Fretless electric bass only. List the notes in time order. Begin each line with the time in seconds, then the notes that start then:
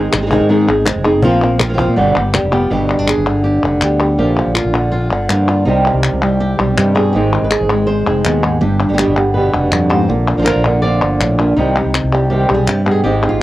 Already playing: G#1
0.13 G#1
0.40 G#2
0.68 G#1
0.96 F1
1.23 A#1
1.60 A#1
1.88 A#2
1.98 G1
2.16 G1
2.43 F1
2.71 G1
2.99 G1
3.17 G1
3.63 F1
3.82 D2
4.19 A#1
4.46 A#1
4.65 A#1
5.11 G1
5.29 G2
5.66 C2
5.94 C2
6.13 C2
6.59 B1
6.78 G2
7.14 G#1
7.42 G#1
7.61 G#1
8.07 F1
8.25 D#2
8.62 G1
8.89 G1
9.08 G1
9.54 F1
9.72 F2
10.09 A#1
10.37 A#1
10.56 A#1
11.02 G1
11.21 A#1
11.57 C2
11.85 C2
12.04 C2
12.50 B1
12.68 G2
13.04 G#1
13.32 G#1